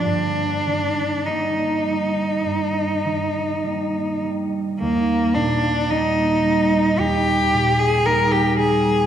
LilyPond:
<<
  \new Staff \with { instrumentName = "Cello" } { \time 4/4 \key ees \major \tempo 4 = 54 d'4 ees'2~ ees'8 r8 | bes8 d'8 ees'4 g'8. aes'16 bes'16 g'16 aes'8 | }
  \new Staff \with { instrumentName = "Harp" } { \clef bass \time 4/4 \key ees \major <g, bes>8 ees8 <g bes ees'>8 g8 g,8 ees8 <g bes ees'>8 g8 | ees,8 bes,8 <g bes ees'>8 g8 ees,8 bes,8 <g bes ees'>8 g8 | }
>>